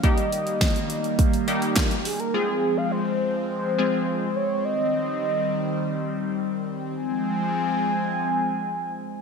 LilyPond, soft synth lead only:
\new Staff \with { instrumentName = "Soft synth lead" } { \time 4/4 \key f \minor \tempo 4 = 104 ees''2. r8 aes'16 bes'16 | aes'8. f''16 c''4 c''4. des''8 | ees''2. r4 | aes''1 | }